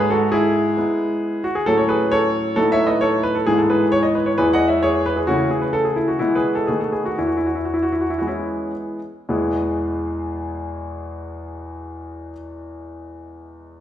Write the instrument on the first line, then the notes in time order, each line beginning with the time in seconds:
grand piano
Already playing: G#2
0.00 G#4
0.10 F#4 A4
0.32 E4 G#4
0.77 G#3 B3 E4
1.44 F#4
1.55 G#4
1.66 A2 F#3 C#4 F#4 A4
1.78 C#5
1.89 G#4 B4
2.12 A4 C#5
2.56 A2 F#3 B3 D#4 F#4 A4
2.72 C#5 E5
2.87 B4 D#5
3.01 A4 C#5
3.23 B4
3.35 A4
3.46 G#2 E3 B3 E4 G#4
3.58 A4
3.70 G#4 B4
3.92 C#5
4.03 D#5
4.15 B4
4.26 C#5
4.38 E2 E3 G#3 E4 G#4 B4
4.53 D#5 F#5
4.68 C#5 E5
4.83 G#4 C#5
5.06 B4
5.17 G#4
5.27 C#3 E3 A3 C#4 E4 F#4
5.51 G#4
5.62 B4
5.73 A4
5.85 G#4
5.96 E4
6.08 F#4
6.19 B2 E3 G#3 B3 E4
6.35 G#4 B4
6.55 A4
6.67 B2 D#3 A3 B3 G#4
6.80 A4
6.92 G#4
7.05 F#4
7.18 E2 E4
7.27 F#4
7.37 E4
7.46 F#4
7.55 E4
7.65 F#4
7.74 E4
7.83 F#4
7.92 E4
8.01 F#4
8.10 E4
8.18 E3 G#3 B3 F#4
8.27 C#4 E4
9.29 E2 B2 G#3 B3 E4 G#4